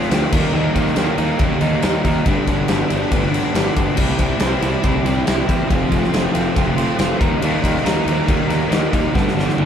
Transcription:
Already playing: C4 F4
0.02 snare
0.10 D2 F3 A3 C4 F4, snare, ride
0.32 D#2 D#3 G3 A#3 D#4, kick, crash
0.53 D#2 D#3 G3 A#3 D#4
0.74 D#2 G3 A#3 D#4, kick, ride
0.86 snare
0.95 D#2 D#3 G3 A#3 D#4, snare, ride
1.17 D#2 D#3 G3 A#3 D#4, ride
1.39 D#2 D#3 G3 A#3 D#4, kick, ride
1.60 D#2 G3 A#3 D#4, snare, ride
1.82 D#2 D#3 G3 A#3 D#4, snare, ride
2.04 D#2 G3 A#3 D#4, kick, ride
2.25 G1 G2 D3 G3 B3 D4, kick, ride
2.47 G1 G3 B3 D4, kick, ride
2.68 G1 D3 G3 B3 D4, snare, ride
2.88 G1 G2 D3 G3 B3 D4, ride
3.10 G1 D3 G3 B3 D4, kick, ride
3.32 G3 B3 D4, snare, ride
3.53 G1 G2 D3 G3 B3 D4, snare, ride
3.75 G1 G3 B3 D4, kick, ride
3.96 C2 C3 G3 C4 E4, kick, crash
4.17 C2 G3 C4 E4, kick, ride
4.39 C2 C3 G3 C4 E4, snare, ride
4.61 C2 C3 G3 C4 E4, ride
4.82 C2 C3 G3 C4 E4, kick, ride
5.04 C2 G3 C4 E4, snare, ride
5.26 C2 C3 G3 C4 E4, snare, ride
5.46 E2 G3 C4 E4, kick, ride
5.67 F1 F3 A3 C4 F4, kick, ride
5.90 F1 A3 C4 F4, kick, ride
6.04 snare
6.11 F1 F3 A3 C4 F4, ride
6.15 snare
6.33 F1 F3 A3 C4 F4, ride
6.54 F1 F3 A3 C4 F4, kick, ride
6.77 A3 C4 F4, snare, ride
6.97 F1 F3 A3 C4 F4, snare, ride
7.19 D#2 D#3 G3 A#3 D#4, kick, ride
7.40 D#2 D#3 G3 A#3 D#4, ride
7.62 D#2 G3 A#3 D#4, kick, ride
7.77 snare
7.83 D#2 D#3 G3 A#3 D#4, snare, ride
8.05 D#2 D#3 G3 A#3 D#4, ride
8.27 D#2 D#3 G3 A#3 D#4, kick, ride
8.47 D#2 G3 A#3 D#4, snare, ride
8.69 D#2 D#3 G3 A#3 D#4, snare, ride
8.91 D#2 G3 A#3 D#4, kick, ride
9.12 G1 G2 D3 G3 B3 D4, kick
9.17 snare
9.28 snare
9.35 G1 G3 B3 D4
9.39 snare
9.49 snare
9.57 G1 D3 G3 B3 D4, high tom

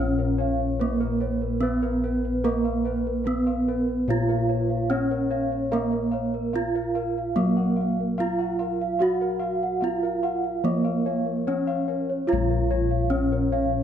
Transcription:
Already playing: A#1 C#4 F4 C#5
0.00 C#5
0.18 A#4 C#5
0.38 C#5 F5
0.60 C#5
0.80 A#3 A#4 B4
1.00 A#4
1.21 B4 C#5
1.42 A#4
1.61 B3 B4
1.82 A#4 B4
2.04 A#4 B4
2.25 B4
2.44 A#3 A#4 B4
2.65 A#4 F5
2.85 B4
3.07 A#4
3.24 B3 B4
3.47 B4 F5
3.68 A#4 B4
3.88 B4
4.08 A#2 F4 C#5 F5
4.29 A#4 F5
4.49 B4 C#5
4.70 F5
4.90 B3 C#4 C#5
5.11 A#4 C#5
5.31 C#5 F5
5.52 C#5
5.72 A#3 A#4 F5
5.91 A#4
6.12 C#5 F5
6.34 A#4
6.53 B3 F4 F5
6.75 A#4 F5
6.95 A#4 F5
7.18 F5
7.36 F#3 A#3 A#4 F5
7.57 A#4 F#5
7.76 F5
7.81 F5
8.00 A#4
8.18 B3 F4 F5
8.39 F5 F#5
8.59 A#4 F5
8.81 F5
8.99 F#4 F5 F#5
9.21 A#4 F#5
9.40 F5
9.63 F#5
9.81 B3 F4 F5
10.03 A#4 F5
10.23 F5 F#5
10.44 F5
10.64 F3 A#3 A#4 C#5
10.85 A#4 F5
11.06 C#5 F5
11.26 A#4
11.47 B3 C#4 C#5
11.67 C#5 F5
11.88 A#4 C#5
12.10 C#5
12.27 F4 C#5 F5
12.32 A#1
12.50 A#4 F5
12.70 C#5
12.91 F5
13.10 B3 C#4 C#5
13.32 A#4 C#5
13.52 C#5 F5
13.73 C#5

